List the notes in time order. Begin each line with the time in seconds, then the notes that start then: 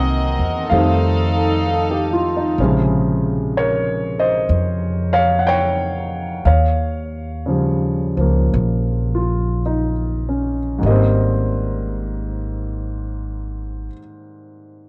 Already playing: C2 D#3 F#3 A#3 C4 A#4 D#5 F#5 G#5
0.39 E2
0.70 F2 D#3 G3 A3 C4 D#4 A4 F5
1.67 A4
1.91 G4
2.13 F4
2.37 D#4
2.58 A#1 C3 C#3 F3 G#3
3.57 A#4 C#5
4.19 C5 D#5
4.49 F2
5.13 C#5 F5
5.39 F#5
5.47 C#5 G5
6.45 D#2 C#5 F5
7.46 C#3 F3
7.50 G3
8.17 C#2 F3 A#3
8.54 A#1
9.15 F4
9.66 D#4
10.29 C#4
10.78 G#2 D#3
10.83 G#1 G3 D#5
10.88 A#3 C4